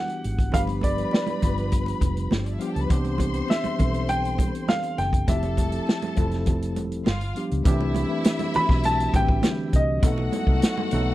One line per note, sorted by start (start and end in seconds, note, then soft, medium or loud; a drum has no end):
0.00 0.55 E3 medium
0.00 0.53 G3 medium
0.00 0.53 B3 medium
0.00 0.54 D4 medium
0.00 0.55 E4 medium
0.00 0.55 F#4 loud
0.00 0.20 G4 medium
0.00 0.55 G4 medium
0.00 0.55 F#5 medium
0.00 0.20 G5 medium
0.08 closed hi-hat soft
0.08 muted conga soft
0.24 0.49 G#1 medium
0.24 closed hi-hat medium
0.38 kick medium
0.38 closed hi-hat soft
0.52 1.04 G1 loud
0.52 0.82 F3 medium
0.52 0.82 G3 medium
0.52 0.82 B3 medium
0.52 0.83 D4 medium
0.52 0.83 G4 medium
0.52 2.29 B4 medium
0.52 0.60 F5 medium
0.52 2.29 B5 loud
0.52 kick medium
0.52 closed hi-hat medium
0.52 low conga medium
0.67 closed hi-hat soft
0.67 muted conga soft
0.81 1.11 D5 medium
0.81 kick medium
0.81 closed hi-hat medium
0.81 high conga medium
0.96 1.26 F3 medium
0.96 1.27 G3 soft
0.96 1.27 B3 soft
0.96 1.27 D4 soft
0.96 1.27 G4 medium
0.96 closed hi-hat soft
1.11 1.68 D5 medium
1.11 snare loud
1.11 muted conga soft
1.27 closed hi-hat soft
1.27 high conga medium
1.42 1.93 G1 medium
1.42 2.20 F3 medium
1.42 2.20 G3 medium
1.42 2.21 B3 medium
1.42 2.21 D4 medium
1.42 2.21 F4 medium
1.42 kick medium
1.42 closed hi-hat medium
1.42 low conga medium
1.57 closed hi-hat soft
1.72 kick medium
1.72 closed hi-hat medium
1.86 closed hi-hat soft
1.86 muted conga soft
2.01 2.27 F1 medium
2.01 kick medium
2.01 closed hi-hat medium
2.01 high conga medium
2.17 closed hi-hat medium
2.31 2.56 G1 medium
2.31 snare loud
2.31 high conga medium
2.38 2.46 C4 medium
2.38 2.46 C5 medium
2.45 2.53 D4 soft
2.45 2.53 D5 medium
2.45 closed hi-hat soft
2.52 2.60 E4 medium
2.52 2.60 E5 medium
2.59 2.79 F3 medium
2.59 2.80 G3 medium
2.59 2.80 B3 medium
2.59 2.80 D4 medium
2.59 2.68 F4 medium
2.59 2.81 G4 medium
2.59 2.68 F5 medium
2.59 closed hi-hat medium
2.66 2.74 G4 medium
2.66 2.75 G5 medium
2.74 2.88 C#2 medium
2.74 2.82 A4 medium
2.74 2.82 A5 medium
2.74 closed hi-hat soft
2.81 2.90 B4 medium
2.81 2.89 B5 medium
2.89 3.41 C2 medium
2.89 3.19 E3 loud
2.89 3.19 B3 medium
2.89 3.19 C4 medium
2.89 3.20 D4 medium
2.89 3.20 G4 loud
2.89 4.94 C5 medium
2.89 4.93 C6 medium
2.89 kick loud
2.89 closed hi-hat medium
2.89 low conga medium
3.04 closed hi-hat soft
3.04 muted conga soft
3.18 kick medium
3.18 closed hi-hat medium
3.18 high conga medium
3.33 3.63 E3 soft
3.33 3.64 B3 soft
3.33 3.64 C4 medium
3.33 3.64 D4 soft
3.33 3.65 G4 medium
3.33 closed hi-hat soft
3.48 4.05 E5 medium
3.48 snare loud
3.48 muted conga soft
3.64 muted fingered electric bass stroke soft
3.64 closed hi-hat soft
3.64 muted conga soft
3.64 high conga medium
3.78 4.50 B1 medium
3.78 4.57 E3 medium
3.78 4.57 G3 medium
3.78 4.57 C4 medium
3.78 4.57 D4 medium
3.78 4.58 A4 medium
3.78 kick medium
3.78 closed hi-hat medium
3.78 low conga medium
3.94 closed hi-hat soft
4.09 4.70 G5 loud
4.09 closed hi-hat medium
4.09 muted conga soft
4.25 closed hi-hat soft
4.38 kick medium
4.38 closed hi-hat medium
4.38 high conga medium
4.55 closed hi-hat soft
4.68 4.96 F5 medium
4.68 snare loud
4.68 high conga medium
4.83 closed hi-hat soft
4.83 muted conga soft
4.98 5.23 F#1 medium
4.98 5.29 G5 medium
4.98 snare soft
4.98 closed hi-hat medium
5.13 kick medium
5.13 closed hi-hat soft
5.27 5.78 F1 loud
5.27 5.57 F3 medium
5.27 5.57 A3 medium
5.27 5.57 C4 medium
5.27 5.57 E4 medium
5.27 5.58 G4 medium
5.27 6.74 A4 medium
5.27 6.43 E5 medium
5.27 6.74 A5 medium
5.27 kick loud
5.27 closed hi-hat medium
5.27 muted conga soft
5.27 low conga medium
5.43 closed hi-hat soft
5.43 muted conga soft
5.57 kick medium
5.57 closed hi-hat medium
5.57 high conga medium
5.71 6.01 F3 medium
5.71 6.01 A3 soft
5.71 6.02 C4 soft
5.71 6.02 E4 soft
5.71 6.03 G4 medium
5.71 closed hi-hat soft
5.87 snare loud
5.87 muted conga soft
6.02 closed hi-hat soft
6.02 muted conga soft
6.02 high conga medium
6.16 6.77 F1 medium
6.16 6.94 F3 medium
6.16 6.95 A3 medium
6.16 6.95 C4 medium
6.16 6.95 E4 medium
6.16 6.96 A4 medium
6.16 kick medium
6.16 closed hi-hat medium
6.16 low conga medium
6.31 snare soft
6.31 closed hi-hat soft
6.46 kick medium
6.46 closed hi-hat medium
6.46 muted conga soft
6.46 low conga medium
6.62 closed hi-hat medium
6.76 7.02 E1 medium
6.76 closed hi-hat medium
6.76 high conga medium
6.92 closed hi-hat soft
7.06 7.32 G1 medium
7.06 7.35 F4 medium
7.06 7.35 F5 medium
7.06 snare loud
7.06 muted conga soft
7.06 high conga medium
7.21 closed hi-hat soft
7.21 muted conga soft
7.35 7.55 F3 medium
7.35 7.55 G3 medium
7.35 7.56 B3 medium
7.35 7.56 D4 medium
7.35 7.56 G4 medium
7.35 closed hi-hat medium
7.51 7.64 C#2 medium
7.51 closed hi-hat soft
7.64 8.03 C2 loud
7.64 7.94 E3 loud
7.64 7.95 A3 medium
7.64 7.95 C4 medium
7.64 7.95 D4 loud
7.64 9.69 E4 loud
7.64 7.95 G4 loud
7.64 9.69 E5 loud
7.64 kick loud
7.64 closed hi-hat medium
7.64 low conga medium
7.81 muted conga soft
7.95 closed hi-hat medium
7.95 high conga medium
8.09 8.39 E3 medium
8.09 8.39 A3 medium
8.09 8.39 C4 medium
8.09 8.40 D4 medium
8.09 8.40 G4 medium
8.24 snare loud
8.24 closed hi-hat loud
8.24 muted conga soft
8.39 closed hi-hat medium
8.39 muted conga soft
8.39 high conga medium
8.53 8.93 E3 medium
8.53 8.93 A3 medium
8.53 8.93 C4 medium
8.53 8.94 D4 medium
8.53 8.94 F#4 medium
8.53 8.86 B5 loud
8.53 muted fingered electric bass stroke soft
8.53 closed hi-hat medium
8.53 low conga medium
8.69 9.07 B1 medium
8.69 kick medium
8.69 snare soft
8.83 9.15 A5 loud
8.83 closed hi-hat medium
8.83 high conga soft
9.00 closed hi-hat medium
9.13 9.39 A1 loud
9.13 9.20 D3 medium
9.13 9.72 A3 medium
9.13 9.73 C4 medium
9.13 9.73 D4 medium
9.13 9.73 G4 medium
9.13 9.76 G5 medium
9.13 kick medium
9.13 closed hi-hat medium
9.13 high conga medium
9.20 9.75 E3 medium
9.28 kick loud
9.43 snare loud
9.43 closed hi-hat medium
9.43 muted conga soft
9.43 high conga medium
9.73 9.99 C2 medium
9.73 10.89 D#5 medium
9.73 kick medium
9.73 closed hi-hat medium
10.02 10.28 B1 loud
10.02 10.32 F#3 medium
10.02 10.32 A3 medium
10.02 10.32 B3 medium
10.02 10.32 D#4 medium
10.02 11.14 F#4 medium
10.02 10.33 A4 loud
10.02 11.14 F#5 loud
10.02 kick loud
10.02 closed hi-hat loud
10.02 muted conga soft
10.02 low conga medium
10.18 muted conga soft
10.32 closed hi-hat medium
10.32 high conga medium
10.46 10.60 C2 medium
10.46 10.76 F#3 medium
10.46 10.77 A3 medium
10.46 10.77 B3 medium
10.46 10.77 D#4 medium
10.46 10.77 A4 medium
10.46 kick medium
10.62 snare loud
10.62 closed hi-hat loud
10.78 high conga medium
10.91 11.14 B1 medium
10.91 11.14 F#3 medium
10.91 11.14 A3 medium
10.91 11.14 B3 medium
10.91 11.14 D#4 medium
10.91 11.14 A4 loud
10.91 closed hi-hat medium
10.91 low conga medium